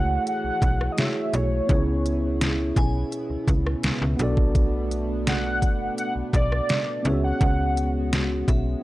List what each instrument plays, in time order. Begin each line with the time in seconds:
Already playing: fm bass C#2, analog synth pad E3 A3 F#4 G#4, tine electric piano A3 E4 F#4 G#4 C#5, soft synth lead F#5
0.27 soft synth lead F#5, closed hi-hat
0.44 fm bass B1
0.62 fm bass B1, kick, closed hi-hat
0.81 cross-stick
0.92 soft synth lead D#5
0.97 tine electric piano A3 E4 F#4 G#4 C#5, soft synth lead E5, snare, closed hi-hat
1.34 fm bass B1, soft synth lead C#5, closed hi-hat
1.67 fm bass C#2, analog synth pad B2 B3 E4, tine electric piano B3 C#4 E4, kick, closed hi-hat
1.72 tine electric piano G#4 C#5
2.06 closed hi-hat
2.41 snare, closed hi-hat
2.76 fm bass B1, synth bell G#5, kick, closed hi-hat
3.12 closed hi-hat
3.30 fm bass C#2
3.48 fm bass C#2, kick, closed hi-hat
3.67 cross-stick
3.83 fm bass C#2, snare, closed hi-hat
4.02 fm bass C#2
4.17 fm bass B1, analog synth pad A3 D4, tine electric piano B3 D4 F#4, closed hi-hat
4.22 tine electric piano A4 D5
4.37 kick
4.55 kick, closed hi-hat
4.91 closed hi-hat
5.27 soft synth lead F#5, snare, closed hi-hat
5.62 fm bass F#1, kick, closed hi-hat
5.98 soft synth lead F#5, closed hi-hat
6.16 fm bass B1
6.33 fm bass B1, soft synth lead D5, kick, closed hi-hat
6.52 cross-stick
6.69 snare, closed hi-hat
7.03 fm bass C#2, analog synth pad G#3 F#4, tine electric piano B3 C#4 E4, soft synth lead E5, closed hi-hat
7.08 tine electric piano G#4 C#5
7.13 tine electric piano F#4
7.24 soft synth lead F#5
7.41 fm bass C#2, kick, closed hi-hat
7.77 closed hi-hat
8.13 snare, closed hi-hat
8.48 fm bass B1, synth bell E5, kick, closed hi-hat